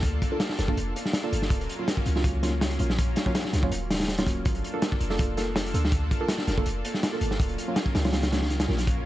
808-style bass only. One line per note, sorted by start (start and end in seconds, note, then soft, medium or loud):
0.00 0.21 D2 loud
0.59 0.76 F1 loud
0.77 0.94 F1 loud
1.32 1.49 G1 medium
1.50 1.67 D#1 loud
2.06 2.78 C#2 loud
2.80 3.15 A#1 medium
3.53 3.70 C#2 loud
3.72 4.44 D#1 medium
4.46 4.62 G1 loud
5.01 5.73 F1 loud
5.74 6.10 D2 medium
6.48 6.64 F1 loud
6.66 6.83 F1 loud
7.21 7.38 G1 medium
7.40 7.56 D#1 loud
7.95 8.67 C#2 loud
8.69 9.04 A#1 medium